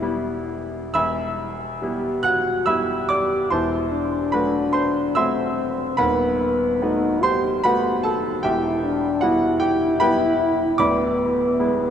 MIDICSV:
0, 0, Header, 1, 3, 480
1, 0, Start_track
1, 0, Key_signature, 1, "minor"
1, 0, Tempo, 930233
1, 487, Time_signature, 3, 2, 24, 8
1, 487, Tempo, 865801
1, 1447, Tempo, 828729
1, 4327, Tempo, 788436
1, 6918, End_track
2, 0, Start_track
2, 0, Title_t, "Grand piano"
2, 0, Program_c, 0, 0
2, 0, Control_c, 0, 64, 127
2, 0, Note_on_c, 0, 28, 59
2, 0, Note_on_c, 0, 40, 69
2, 0, Note_on_c, 0, 55, 50
2, 0, Note_on_c, 0, 59, 56
2, 0, Note_on_c, 0, 64, 56
2, 9, Note_off_c, 0, 55, 0
2, 9, Note_on_c, 0, 55, 52
2, 13, Note_off_c, 0, 59, 0
2, 13, Note_on_c, 0, 59, 46
2, 15, Note_off_c, 0, 64, 0
2, 15, Note_on_c, 0, 64, 54
2, 468, Note_off_c, 0, 40, 0
2, 468, Note_off_c, 0, 55, 0
2, 469, Note_off_c, 0, 28, 0
2, 469, Note_off_c, 0, 59, 0
2, 470, Note_off_c, 0, 64, 0
2, 483, Note_on_c, 0, 88, 88
2, 489, Note_on_c, 0, 76, 68
2, 489, Note_on_c, 0, 83, 66
2, 491, Note_on_c, 0, 28, 44
2, 491, Note_on_c, 0, 40, 55
2, 498, Control_c, 0, 64, 0
2, 592, Control_c, 0, 64, 127
2, 972, Note_on_c, 0, 55, 44
2, 974, Note_on_c, 0, 59, 44
2, 979, Note_on_c, 0, 64, 43
2, 1187, Note_off_c, 0, 76, 0
2, 1188, Note_off_c, 0, 83, 0
2, 1199, Note_on_c, 0, 90, 86
2, 1207, Note_off_c, 0, 88, 0
2, 1207, Note_on_c, 0, 78, 66
2, 1426, Note_off_c, 0, 55, 0
2, 1427, Note_off_c, 0, 59, 0
2, 1429, Note_off_c, 0, 64, 0
2, 1429, Note_off_c, 0, 78, 0
2, 1436, Note_on_c, 0, 88, 92
2, 1442, Note_off_c, 0, 90, 0
2, 1442, Note_on_c, 0, 55, 43
2, 1442, Note_on_c, 0, 76, 61
2, 1443, Note_on_c, 0, 83, 65
2, 1446, Note_on_c, 0, 59, 41
2, 1449, Note_on_c, 0, 64, 46
2, 1672, Note_off_c, 0, 76, 0
2, 1672, Note_off_c, 0, 83, 0
2, 1685, Note_on_c, 0, 86, 82
2, 1686, Note_off_c, 0, 88, 0
2, 1692, Note_on_c, 0, 74, 63
2, 1905, Note_off_c, 0, 55, 0
2, 1908, Note_off_c, 0, 59, 0
2, 1909, Note_off_c, 0, 64, 0
2, 1910, Note_off_c, 0, 28, 0
2, 1910, Note_off_c, 0, 40, 0
2, 1914, Note_off_c, 0, 74, 0
2, 1927, Note_on_c, 0, 84, 70
2, 1928, Note_off_c, 0, 86, 0
2, 1933, Note_on_c, 0, 28, 47
2, 1933, Note_on_c, 0, 81, 59
2, 1935, Note_on_c, 0, 40, 54
2, 1935, Note_on_c, 0, 72, 61
2, 1940, Control_c, 0, 64, 0
2, 2033, Control_c, 0, 64, 127
2, 2383, Note_off_c, 0, 81, 0
2, 2384, Note_off_c, 0, 72, 0
2, 2400, Note_on_c, 0, 83, 76
2, 2403, Note_off_c, 0, 84, 0
2, 2407, Note_on_c, 0, 54, 47
2, 2409, Note_on_c, 0, 57, 47
2, 2409, Note_on_c, 0, 71, 62
2, 2412, Note_on_c, 0, 66, 51
2, 2629, Note_off_c, 0, 71, 0
2, 2635, Note_on_c, 0, 84, 80
2, 2642, Note_off_c, 0, 83, 0
2, 2643, Note_on_c, 0, 72, 59
2, 2863, Note_off_c, 0, 54, 0
2, 2864, Note_off_c, 0, 57, 0
2, 2865, Note_off_c, 0, 66, 0
2, 2868, Note_off_c, 0, 72, 0
2, 2880, Note_off_c, 0, 84, 0
2, 2881, Note_on_c, 0, 88, 89
2, 2886, Note_on_c, 0, 76, 64
2, 2888, Note_on_c, 0, 54, 41
2, 2889, Note_on_c, 0, 84, 68
2, 2890, Note_on_c, 0, 57, 49
2, 2892, Note_on_c, 0, 66, 46
2, 3341, Note_off_c, 0, 76, 0
2, 3342, Note_off_c, 0, 28, 0
2, 3342, Note_off_c, 0, 40, 0
2, 3342, Note_off_c, 0, 54, 0
2, 3342, Note_off_c, 0, 84, 0
2, 3343, Note_off_c, 0, 57, 0
2, 3344, Note_off_c, 0, 66, 0
2, 3356, Note_on_c, 0, 83, 83
2, 3361, Note_off_c, 0, 88, 0
2, 3362, Note_on_c, 0, 39, 58
2, 3362, Note_on_c, 0, 71, 66
2, 3363, Note_on_c, 0, 27, 52
2, 3363, Note_on_c, 0, 78, 65
2, 3375, Control_c, 0, 64, 0
2, 3474, Control_c, 0, 64, 127
2, 3846, Note_on_c, 0, 57, 45
2, 3849, Note_on_c, 0, 59, 46
2, 3850, Note_on_c, 0, 66, 52
2, 4062, Note_off_c, 0, 71, 0
2, 4063, Note_off_c, 0, 78, 0
2, 4082, Note_off_c, 0, 83, 0
2, 4084, Note_on_c, 0, 84, 90
2, 4089, Note_on_c, 0, 72, 67
2, 4302, Note_off_c, 0, 57, 0
2, 4304, Note_off_c, 0, 59, 0
2, 4304, Note_off_c, 0, 66, 0
2, 4310, Note_off_c, 0, 72, 0
2, 4320, Note_on_c, 0, 83, 93
2, 4324, Note_off_c, 0, 84, 0
2, 4327, Note_on_c, 0, 57, 46
2, 4327, Note_on_c, 0, 71, 63
2, 4328, Note_on_c, 0, 78, 66
2, 4331, Note_on_c, 0, 59, 46
2, 4331, Note_on_c, 0, 66, 52
2, 4554, Note_off_c, 0, 71, 0
2, 4554, Note_off_c, 0, 78, 0
2, 4562, Note_on_c, 0, 81, 82
2, 4567, Note_off_c, 0, 83, 0
2, 4568, Note_on_c, 0, 69, 64
2, 4783, Note_off_c, 0, 39, 0
2, 4784, Note_off_c, 0, 27, 0
2, 4785, Note_off_c, 0, 57, 0
2, 4787, Note_off_c, 0, 66, 0
2, 4788, Note_off_c, 0, 59, 0
2, 4791, Note_off_c, 0, 69, 0
2, 4802, Note_on_c, 0, 79, 77
2, 4805, Note_off_c, 0, 81, 0
2, 4810, Note_on_c, 0, 67, 55
2, 4811, Note_on_c, 0, 40, 57
2, 4811, Note_on_c, 0, 76, 58
2, 4812, Note_on_c, 0, 28, 51
2, 4819, Control_c, 0, 64, 0
2, 4924, Control_c, 0, 64, 127
2, 5261, Note_off_c, 0, 67, 0
2, 5261, Note_off_c, 0, 76, 0
2, 5277, Note_on_c, 0, 78, 82
2, 5281, Note_off_c, 0, 79, 0
2, 5285, Note_on_c, 0, 55, 47
2, 5286, Note_on_c, 0, 66, 61
2, 5290, Note_on_c, 0, 59, 48
2, 5290, Note_on_c, 0, 64, 50
2, 5505, Note_off_c, 0, 66, 0
2, 5514, Note_on_c, 0, 79, 82
2, 5517, Note_off_c, 0, 78, 0
2, 5520, Note_on_c, 0, 67, 57
2, 5735, Note_off_c, 0, 55, 0
2, 5737, Note_off_c, 0, 59, 0
2, 5737, Note_off_c, 0, 64, 0
2, 5741, Note_off_c, 0, 67, 0
2, 5755, Note_off_c, 0, 79, 0
2, 5758, Note_on_c, 0, 83, 96
2, 5764, Note_on_c, 0, 79, 71
2, 5765, Note_on_c, 0, 71, 66
2, 5766, Note_on_c, 0, 55, 45
2, 5768, Note_on_c, 0, 59, 49
2, 5770, Note_on_c, 0, 64, 49
2, 6215, Note_off_c, 0, 28, 0
2, 6215, Note_off_c, 0, 40, 0
2, 6217, Note_off_c, 0, 71, 0
2, 6217, Note_off_c, 0, 79, 0
2, 6218, Note_off_c, 0, 55, 0
2, 6219, Note_off_c, 0, 59, 0
2, 6220, Note_off_c, 0, 64, 0
2, 6234, Note_on_c, 0, 86, 86
2, 6235, Note_off_c, 0, 83, 0
2, 6241, Note_on_c, 0, 26, 50
2, 6243, Note_on_c, 0, 38, 53
2, 6243, Note_on_c, 0, 74, 61
2, 6244, Note_on_c, 0, 83, 65
2, 6247, Control_c, 0, 64, 0
2, 6359, Control_c, 0, 64, 127
2, 6730, Note_on_c, 0, 56, 45
2, 6732, Note_on_c, 0, 59, 45
2, 6732, Note_on_c, 0, 64, 51
2, 6918, Note_off_c, 0, 26, 0
2, 6918, Note_off_c, 0, 38, 0
2, 6918, Note_off_c, 0, 56, 0
2, 6918, Note_off_c, 0, 59, 0
2, 6918, Note_off_c, 0, 64, 0
2, 6918, Note_off_c, 0, 74, 0
2, 6918, Note_off_c, 0, 83, 0
2, 6918, Note_off_c, 0, 86, 0
2, 6918, End_track
3, 0, Start_track
3, 0, Title_t, "French horn"
3, 0, Program_c, 1, 60
3, 0, Note_on_c, 1, 64, 115
3, 230, Note_off_c, 1, 64, 0
3, 972, Note_on_c, 1, 67, 76
3, 1210, Note_on_c, 1, 66, 68
3, 1218, Note_off_c, 1, 67, 0
3, 1444, Note_on_c, 1, 67, 65
3, 1453, Note_off_c, 1, 66, 0
3, 1930, Note_on_c, 1, 64, 65
3, 1939, Note_off_c, 1, 67, 0
3, 2167, Note_on_c, 1, 62, 69
3, 2176, Note_off_c, 1, 64, 0
3, 2890, Note_on_c, 1, 60, 66
3, 2899, Note_off_c, 1, 62, 0
3, 3362, Note_off_c, 1, 60, 0
3, 3366, Note_on_c, 1, 59, 66
3, 3854, Note_on_c, 1, 63, 74
3, 3863, Note_off_c, 1, 59, 0
3, 4084, Note_on_c, 1, 67, 77
3, 4092, Note_off_c, 1, 63, 0
3, 4329, Note_on_c, 1, 66, 59
3, 4338, Note_off_c, 1, 67, 0
3, 4655, Note_off_c, 1, 66, 0
3, 4820, Note_on_c, 1, 64, 66
3, 5050, Note_on_c, 1, 62, 71
3, 5059, Note_off_c, 1, 64, 0
3, 5293, Note_on_c, 1, 64, 100
3, 5303, Note_off_c, 1, 62, 0
3, 6243, Note_off_c, 1, 64, 0
3, 6247, Note_on_c, 1, 59, 86
3, 6918, Note_off_c, 1, 59, 0
3, 6918, End_track
0, 0, End_of_file